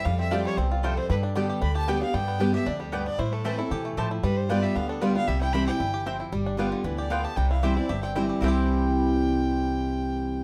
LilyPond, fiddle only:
\new Staff \with { instrumentName = "Fiddle" } { \time 4/4 \key c \major \tempo 4 = 230 f''8 e''8 d''8 des''8 c''8 f'8 a'8 c''8 | b'8 r4. b''8 a''8 g''8 f''8 | g''4. e''8 d''8 g'8 b'8 d''8 | c''8 a'8 b'8 a'4 r4. |
b'8 c''8 d''8 e''8 f''8 a'8 d''8 f''8 | e''8 g''8 b''8 g''2~ g''16 r16 | r2 b'8 d''8 f''8 a''8 | g''8 f''8 e''8 d''8 e''8 g''8 r4 |
g''1~ | g''1 | }